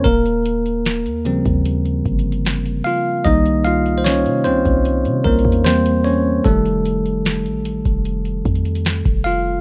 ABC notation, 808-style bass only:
X:1
M:4/4
L:1/16
Q:1/4=75
K:Ebmix
V:1 name="808-style bass" clef=bass
E,,,4- E,,, E,,2 E,,3 G,,,4 z2 | C,,4- C,, C, C,, C,,2 C, C,, =E,,4- E,, | F,,,4- F,,, =A,,,2 F,,,3 F,,3 F,,,3 |]